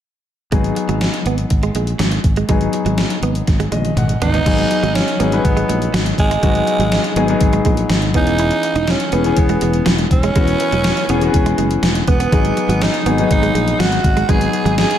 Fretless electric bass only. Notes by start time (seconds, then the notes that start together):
0.52 G#1
0.89 G#1
1.26 G#1
1.51 G#1
1.75 A#1
1.99 G#1
2.24 G#1
2.49 G#1
2.85 G#1
3.22 G#1
3.48 G#1
3.72 A#1
3.96 G#1
4.21 G#1
4.46 G#1
4.83 G#1
5.20 G#1
5.45 G#1
5.70 A#1
5.94 G#1
6.18 G#1
6.43 G#1
6.79 G#1
7.16 G#1
7.41 G#1
7.65 A#1
7.89 G#1
8.14 E1
8.75 E1
9.13 E1
9.37 E1
9.62 E1
9.87 E1
10.11 E1
10.36 E1
10.72 E1
11.09 E1
11.34 E1
11.58 F#1
11.83 E1
12.08 E1
12.32 G#1
12.69 G#1
13.06 G#1
13.31 G#1
13.55 A#1
13.79 G#1
14.04 G#1
14.29 G#1
14.65 G#1